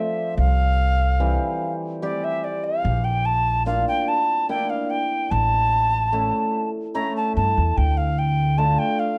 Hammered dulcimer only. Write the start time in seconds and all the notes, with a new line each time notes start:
Already playing: F3
1.20 E3 G3 C4
2.02 G3 C4 G4
3.66 A#3 D4 F4
4.49 A#3 D4 E4
6.13 A3 C#4 E4
6.95 A3 C#4 E4
8.58 A3 D4 F4